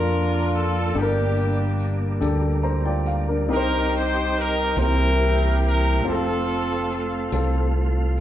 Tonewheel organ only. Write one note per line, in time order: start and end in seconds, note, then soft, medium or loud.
0.00 0.93 F3 medium
0.00 3.46 A#3 medium
0.00 3.46 D4 medium
0.95 3.48 G3 medium
3.50 6.03 G3 medium
3.50 8.20 C4 medium
3.50 4.77 D#4 medium
4.77 6.04 E3 medium
4.77 6.04 A#3 medium
4.77 6.04 G4 medium
6.06 8.20 A3 medium
6.06 8.20 F4 medium